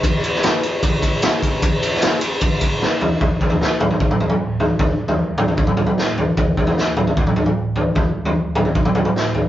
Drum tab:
RD |x-x-x-x-x-x-x-x-|x-x-x-x-x-x-----|----------------|----------------|
SD |---oo-------o---|---oo-------o---|----o-----------|------------o---|
T2 |----------------|----------------|------o--o-o----|------o--ooo----|
FT |----------------|--------------o-|o-oo--ooo-o---o-|o--o--ooo-o---o-|
BD |o-------o-o---o-|o-------o-o-----|o-o-----o-------|o-------o-------|

RD |----------------|----------------|
SD |----o-----------|------------o---|
T2 |------o--o-o----|------o--ooo----|
FT |o-oo--ooo-o---o-|o--o--ooo-o---o-|
BD |o-o-----o-------|o-------o-------|